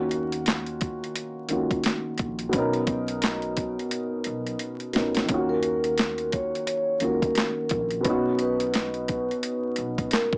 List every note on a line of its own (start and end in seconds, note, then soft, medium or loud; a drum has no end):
0.00 0.98 D#2 loud
0.00 1.44 D#3 medium
0.00 1.45 A#3 medium
0.00 1.47 C#4 medium
0.00 1.48 F4 medium
0.00 1.49 F#4 medium
0.11 closed hi-hat medium
0.32 closed hi-hat medium
0.46 snare loud
0.46 clap medium
0.46 closed hi-hat medium
0.66 closed hi-hat soft
0.81 kick medium
0.81 closed hi-hat medium
1.04 closed hi-hat soft
1.15 closed hi-hat loud
1.48 1.77 C#2 medium
1.48 2.52 D#3 medium
1.48 2.53 A#3 soft
1.48 2.52 C#4 soft
1.48 2.54 F4 soft
1.48 closed hi-hat medium
1.53 2.55 F#4 medium
1.71 kick loud
1.71 closed hi-hat medium
1.84 snare loud
1.84 clap medium
1.84 closed hi-hat medium
2.18 2.46 A#1 medium
2.18 kick medium
2.18 closed hi-hat medium
2.39 closed hi-hat medium
2.49 4.89 B2 medium
2.49 4.90 B3 medium
2.49 closed hi-hat medium
2.53 3.74 B1 loud
2.53 4.91 C#4 medium
2.53 4.92 D#4 medium
2.53 kick loud
2.58 4.93 A#4 medium
2.73 closed hi-hat soft
2.87 kick loud
2.87 closed hi-hat medium
3.08 closed hi-hat medium
3.22 snare loud
3.22 clap medium
3.22 closed hi-hat medium
3.42 closed hi-hat soft
3.57 kick medium
3.57 closed hi-hat medium
3.79 closed hi-hat soft
3.91 closed hi-hat loud
4.24 4.53 B1 medium
4.24 closed hi-hat medium
4.47 closed hi-hat medium
4.59 closed hi-hat medium
4.80 closed hi-hat soft
4.93 5.22 C#2 medium
4.93 5.28 B2 medium
4.93 5.29 B3 soft
4.93 5.28 C#4 soft
4.93 5.30 D#4 soft
4.93 snare medium
4.93 closed hi-hat medium
4.97 5.31 A#4 medium
5.15 snare medium
5.15 closed hi-hat medium
5.25 6.96 D#3 medium
5.25 6.97 A#3 medium
5.25 closed hi-hat medium
5.29 6.50 D#2 loud
5.29 6.98 C#4 medium
5.29 6.99 F4 medium
5.29 kick loud
5.34 7.01 F#4 medium
5.49 5.62 A#4 medium
5.63 6.29 A#4 medium
5.63 closed hi-hat medium
5.84 closed hi-hat medium
5.98 snare loud
5.98 clap medium
5.98 closed hi-hat medium
6.18 closed hi-hat soft
6.32 6.64 C#5 medium
6.32 kick medium
6.32 closed hi-hat medium
6.55 closed hi-hat soft
6.67 6.98 C#5 medium
6.67 closed hi-hat loud
6.99 7.29 C#2 loud
6.99 8.04 D#3 soft
6.99 8.05 A#3 soft
6.99 8.04 C#4 soft
6.99 8.06 F4 soft
6.99 8.01 A#4 medium
6.99 closed hi-hat medium
7.04 8.06 F#4 medium
7.22 kick medium
7.22 closed hi-hat medium
7.35 snare loud
7.35 clap medium
7.35 closed hi-hat medium
7.69 7.98 A#1 medium
7.69 kick loud
7.69 closed hi-hat medium
7.91 closed hi-hat medium
8.01 10.38 B2 medium
8.01 10.38 B3 medium
8.01 closed hi-hat medium
8.05 9.25 B1 loud
8.05 10.38 C#4 medium
8.05 10.38 D#4 medium
8.05 kick loud
8.10 10.38 F#4 medium
8.39 10.08 B4 medium
8.39 closed hi-hat medium
8.60 closed hi-hat medium
8.74 snare loud
8.74 clap medium
8.74 closed hi-hat medium
8.94 closed hi-hat soft
9.08 kick medium
9.08 closed hi-hat medium
9.31 closed hi-hat soft
9.43 closed hi-hat loud
9.76 10.05 B1 medium
9.76 closed hi-hat medium
9.98 kick medium
9.98 closed hi-hat medium
10.11 10.38 A#4 medium
10.11 snare loud
10.11 clap medium
10.11 closed hi-hat medium
10.33 kick medium